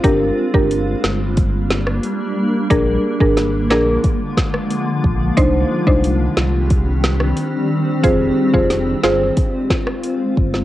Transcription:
<<
  \new Staff \with { instrumentName = "Synth pluck" } { \time 4/4 \key c \minor \tempo 4 = 90 <d' g' bes'>16 r8 <d' g' bes'>16 r2. | <d' aes' bes'>16 r8 <d' aes' bes'>16 r8 <d' aes' bes'>16 r2 r16 | <d' ees' c''>16 r8 <d' ees' c''>16 r2. | <f' aes' c''>16 r8 <f' aes' c''>16 r8 <f' aes' c''>16 r2 r16 | }
  \new Staff \with { instrumentName = "Ambient pad" } { \time 4/4 \key c \minor << { <g d'>1 | <d f aes f'>1 | <ees g c' g'>1 | <aes f'>1 | } \\ { bes1~ | bes1 | d'1 | r1 | } >> }
  \new Staff \with { instrumentName = "Sub bass" } { \clef bass \time 4/4 \key c \minor g,,8 r16 g,,8. g,,4. r4 | bes,,8 r16 aes,,8. bes,,8 r4. bes,,8 | c,8 r16 c,8. c,4. r4 | f,,8 r16 f,,8. g,,8 r4. g,,8 | }
  \new DrumStaff \with { instrumentName = "Drums" } \drummode { \time 4/4 <hh bd>8. bd16 hh8 sn8 <hh bd>8 sn16 ss16 hh4 | <hh bd>8. bd16 <hh sn>8 sn8 <hh bd>8 <bd sn>16 ss16 hh8 bd8 | <hh bd>8. bd16 hh8 sn8 <hh bd>8 sn16 ss16 hh4 | <hh bd>8. bd16 <hh sn>8 sn8 <hh bd>8 <bd sn>16 ss16 hh8 bd16 sn16 | }
>>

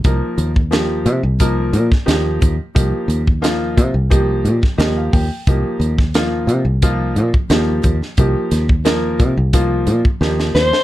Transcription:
<<
  \new Staff \with { instrumentName = "Soprano saxophone" } { \time 4/4 \key c \minor \tempo 4 = 88 r1 | r1 | r1 | r2. r8 c''8 | }
  \new Staff \with { instrumentName = "Grand piano" } { \time 4/4 \key c \minor << { r1 | r2. ees''16 f''16 g''8 | r1 | r1 | } \\ { <f bes ees' bes'>8 r8 <f bes ees' g'>8 r8 <f bes ees' bes'>8 r8 <f bes ees' g'>8 r8 | <f bes ees' g'>8 r8 <f bes ees' f'>8 r8 <f bes ees' g'>8 r8 <f bes ees' g'>8 r8 | <f bes ees' g'>8 r8 <f bes ees' f'>8 r8 <f bes ees' f'>8 r8 <f bes ees' g'>8 r8 | <f bes ees' g'>8 r8 <f bes ees' bes'>8 r8 <f bes ees' f'>8 r8 <f bes ees' g'>8 r8 | } >> }
  \new Staff \with { instrumentName = "Fingered electric bass" } { \clef bass \time 4/4 \key c \minor c,16 r16 ees,4 c16 c,8. bes,16 r16 ees,8 ees,16 r16 | c,16 r16 ees,4 c16 c,8. bes,16 r16 ees,8 ees,16 r16 | c,16 r16 ees,4 c16 c,8. bes,16 r16 ees,8 ees,16 r16 | c,16 r16 ees,4 c16 c,8. bes,16 r16 ees,8 ees,16 r16 | }
  \new DrumStaff \with { instrumentName = "Drums" } \drummode { \time 4/4 <hh bd>8 hh16 bd16 <hh sn>8 hh8 <hh bd>8 hh16 <bd sn>16 <hh sn>8 <hh bd>8 | <hh bd>8 hh16 bd16 <hh sn>8 <hh bd>8 <hh bd>8 hh16 <bd sn>16 <hh sn>8 <hho bd>8 | <hh bd>8 hh16 <bd sn>16 <hh sn>8 hh8 <hh bd>8 hh16 bd16 <hh sn>8 <hh bd>16 sn16 | <hh bd>8 <hh sn>16 bd16 <hh sn>8 <hh bd>8 <hh bd>8 hh16 bd16 sn16 sn16 sn16 sn16 | }
>>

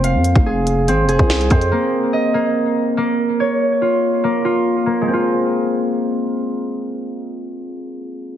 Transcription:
<<
  \new Staff \with { instrumentName = "Harp" } { \time 4/4 \key f \minor \tempo 4 = 143 <c' f''>4 aes'4 c'8 aes'4 c'8 | bes4 ees''8 bes4. bes4 | des''4 f'4 bes8 f'4 bes8 | <aes c' f'>1~ |
<aes c' f'>1 | }
  \new Staff \with { instrumentName = "808-style bass" } { \clef bass \time 4/4 \key f \minor f,,16 f,8 f,,4~ f,,16 aes,,16. f,,16. c,8. f,8 | r1 | r1 | r1 |
r1 | }
  \new DrumStaff \with { instrumentName = "Drums" } \drummode { \time 4/4 hh8 hh16 bd16 r8 hh8 hh8 hh16 bd16 sn16 hh16 <hh bd>16 hh16 | r4 r4 r4 r4 | r4 r4 r4 r4 | r4 r4 r4 r4 |
r4 r4 r4 r4 | }
>>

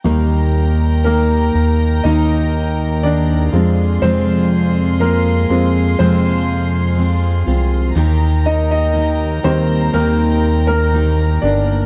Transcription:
<<
  \new Staff \with { instrumentName = "String section" } { \time 4/4 \key ees \major \tempo 4 = 61 <bes' g'' bes''>2.~ <bes' g'' bes''>8 <aes' f'' c'''>8~ | <aes' f'' c'''>1 | <bes' g'' bes''>1 | }
  \new Staff \with { instrumentName = "Grand piano" } { \time 4/4 \key ees \major r4 <bes bes'>4 <ees' ees''>4 <d' d''>4 | <c' c''>4 <bes bes'>4 <c' c''>4. r8 | r8 <ees' ees''>16 <ees' ees''>8. <c' c''>8 <bes bes'>8. <bes bes'>8. <d' d''>8 | }
  \new Staff \with { instrumentName = "Grand piano" } { \clef bass \time 4/4 \key ees \major <ees g bes>2.~ <ees g bes>8 <f aes c'>8~ | <f aes c'>4. <f aes c'>8 r2 | r4. <ees g bes>8 r2 | }
  \new Staff \with { instrumentName = "Steel-string acoustic guitar" } { \time 4/4 \key ees \major <ees bes ees' g'>4 <ees bes ees' g'>4 <ees bes ees' g'>4 <ees bes ees' g'>8 <f aes c' f'>8 | <f, c f aes c' f'>4 <f aes c' f'>4 <f, c f aes c' f'>4 <f aes c' f'>8 <f aes c' f'>8 | <ees bes ees' g'>4 <ees bes ees' g'>8 <bes ees' g'>8 <ees bes ees' g'>4 <ees bes ees' g'>8 <bes ees' g'>8 | }
  \new Staff \with { instrumentName = "Analog synth bass" } { \clef bass \time 4/4 \key ees \major ees,4. ees,8 ees,4. f,8 | f,4. f,8 f,4. c,8 | ees,4. ees,8 ees,4. g,,8 | }
>>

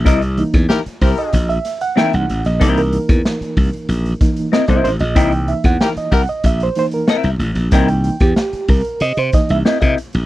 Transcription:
<<
  \new Staff \with { instrumentName = "Reed electric piano" } { \time 4/4 \key c \mixolydian \tempo 4 = 94 e''8. r8. c''16 dis''8 e''8 fis''16 g''16 fis''8 dis''16~ | dis''16 bes'2~ bes'8 r16 dis''16 c''16 c''16 dis''16 | g''8 e''16 fis''16 g''16 dis''16 fis''16 dis''16 e''16 c''16 c''16 bes'8 r8. | g''8. g'8. bes'8 dis''16 c''16 dis''16 e''16 dis''8 r8 | }
  \new Staff \with { instrumentName = "Reed electric piano" } { \time 4/4 \key c \mixolydian r8 <e bes dis'>8 r2 <e bes dis'>8 r8 | <e bes dis'>2~ <e bes dis'>8 <e bes dis'>8 r4 | <e bes dis'>4. r4 <e bes dis'>8 r4 | <e bes dis'>8 r2 <e bes dis'>8 r4 | }
  \new Staff \with { instrumentName = "Clean electric guitar" } { \time 4/4 \key c \mixolydian <c' e' bes' dis''>16 r2 r8. <c' e' bes' e''>16 r8. | <c' e' bes' dis''>16 r2 r8. <c' e' bes' dis''>16 <c' e' bes' dis''>16 r8 | <c' e' bes' dis''>16 r2 r8. <c' e' bes' e''>16 r8. | <c' e' bes' dis''>16 r2 r8. <c' e' bes' dis''>16 <c' e' bes' dis''>16 r8 | }
  \new Staff \with { instrumentName = "Horn section" } { \time 4/4 \key c \mixolydian r4 <e' g' bes'>16 r16 <e' g' bes'>8. r4. r16 | r1 | r4 <e' g' bes'>16 r16 <e' g' bes'>16 r2 r16 | r1 | }
  \new Staff \with { instrumentName = "Slap bass" } { \clef bass \time 4/4 \key c \mixolydian c,8. e,16 r8 c,16 r16 bes,,8 r8. c,16 a,,16 bes,,16 | c,8. e,16 r8 c,16 r16 bes,,8 r8. c,16 a,,16 bes,,16 | c,8. e,16 r8 c,16 r16 bes,,8 r8. c,16 a,,16 bes,,16 | c,8. e,16 r8 c,16 r16 c16 c16 r16 c,16 r16 c16 r16 bes,,16 | }
  \new DrumStaff \with { instrumentName = "Drums" } \drummode { \time 4/4 <hh bd>16 hh16 hh16 <hh bd>16 sn16 hh16 <hho bd>16 hh16 <hh bd>16 hh16 <hh sn>16 hh16 sn16 hh16 hh16 <hh sn>16 | <hh bd>16 hh16 hh16 <hh bd>16 sn16 hh16 <hho bd>16 hh16 hh16 hh16 <hh bd sn>16 hh16 sn16 <hh bd>16 hh16 hh16 | <hh bd>16 hh16 hh16 <hh bd>16 sn16 hh16 <hho bd>16 hh16 <hh bd>16 hh16 <hh sn>16 hh16 sn16 hh16 hh16 <hh sn>16 | <hh bd>16 hh16 hh16 <hh bd>16 sn16 hh16 <hho bd>16 hh16 hh16 hh16 <hh bd sn>16 hh16 sn16 <hh bd>16 hh16 <hh sn>16 | }
>>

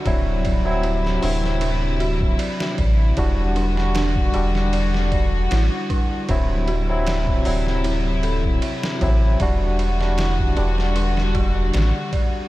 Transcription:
<<
  \new Staff \with { instrumentName = "Synth bell" } { \time 4/4 \key e \minor \tempo 4 = 77 d''8 d''8 e'8 d'8 d'8 fis'8 d''8 d''8 | e'8 d'8 d'8 fis'8 d''8 d''8 e'8 d'8 | d'8 fis'8 d''8 d''8 e'8 a'8 e''8 e'8 | d''8 d''8 e'8 d'8 d'8 fis'8 d''8 d''8 | }
  \new Staff \with { instrumentName = "Tine electric piano" } { \time 4/4 \key e \minor <fis c' e'>8. <fis c' e'>8. <fis c' e'>2~ <fis c' e'>8 | <g d' fis'>8. <g d' fis'>8. <g d' g'>16 r2 r16 | <fis c' e'>8. <fis c' e'>8. <fis c' e'>2 <fis c' e'>8 | <g d' fis'>8. <g d' fis'>8. <g d' g'>16 r2 r16 | }
  \new Staff \with { instrumentName = "String section" } { \clef bass \time 4/4 \key e \minor <c fis e'>1 | <d g fis'>1 | <c fis e'>1 | <d g fis'>1 | }
  \new Staff \with { instrumentName = "Sub bass" } { \clef bass \time 4/4 \key e \minor d,,4. d,,4. r8 a,,8 | e,,4. e,,4. a,,8 r8 | d,,4. d,,4. r8 a,,8 | e,,4. e,,4. a,,8 r8 | }
  \new DrumStaff \with { instrumentName = "Drums" } \drummode { \time 4/4 <bd cymr>8 <bd cymr>8 cymr16 sn16 hho16 sn16 cymr8 cymr16 bd16 cymr16 sn16 <bd cymr>8 | <bd cymr>8 cymr16 sn16 <cymr sn>16 bd16 cymr16 sn16 cymr16 sn16 <bd cymr>8 <cymr sn>8 <bd cymr>8 | <bd cymr>8 cymr8 <cymr sn>16 bd16 hho16 sn16 cymr8 cymr16 bd16 cymr16 sn16 <bd cymr>8 | <bd cymr>8 cymr16 sn16 <cymr sn>16 bd16 cymr16 sn16 cymr16 sn16 <bd cymr>8 <cymr sn>8 <bd cymr>8 | }
>>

